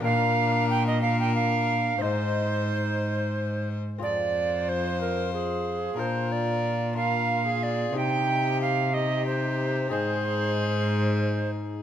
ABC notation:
X:1
M:6/8
L:1/16
Q:3/8=61
K:Bbmix
V:1 name="Recorder"
f4 g e f g f4 | c8- c2 z2 | d4 c2 B2 A4 | c2 d4 f4 d2 |
g4 f2 e2 c4 | c8- c2 z2 |]
V:2 name="Violin"
B6 B6 | c8- c3 z | c12 | B6 B3 A3 |
G6 G6 | A12 |]
V:3 name="Trombone"
D6 D6 | E8- E2 z2 | F12 | F6 F6 |
E6 E6 | E12 |]
V:4 name="Lute"
[DB]12 | [CEc]12 | [CFA]12 | [DFB]6 [DFB]6 |
[CEG]12 | [CEA]12 |]
V:5 name="Lute" clef=bass
B,,12 | A,,8- A,,2 z2 | F,,12 | B,,12 |
C,12 | A,,12 |]
V:6 name="Cello" clef=bass
B,,12 | A,,8- A,,2 z2 | F,,12 | B,,12 |
C,12 | A,,12 |]